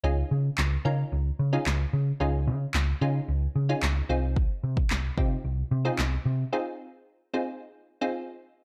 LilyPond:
<<
  \new Staff \with { instrumentName = "Synth stab" } { \time 4/4 \key des \lydian \tempo 4 = 111 <des' ees' f' aes'>8. r8. <des' ees' f' bes'>8 r8. <des' ees' f' aes'>8 r8. | <des' ees' f' aes'>8. r8. <des' ees' f' aes'>8 r8. <des' ees' f' aes'>8 r16 <c' ees' f' aes'>8~ | <c' ees' f' aes'>4 r8 <c' ees' f' g'>8 r8. <c' ees' f' aes'>8 r8. | <c' ees' f' aes'>8. r8. <c' ees' f' aes'>8 r8. <c' ees' f' aes'>8 r8. | }
  \new Staff \with { instrumentName = "Picked electric bass" } { \clef bass \time 4/4 \key des \lydian des,8 des8 des,8 des8 des,8 des8 des,8 des8 | des,8 des8 des,8 des8 des,8 des8 des,8 c,8~ | c,8 c8 c,8 c8 c,8 c8 c,8 c8 | r1 | }
  \new DrumStaff \with { instrumentName = "Drums" } \drummode { \time 4/4 r4 <hc sn>4 r4 <hc sn>4 | r4 <hc sn>4 r4 <hc sn>4 | bd8. bd16 <hc sn>8 bd8 r4 <hc sn>4 | r4 r4 r4 r4 | }
>>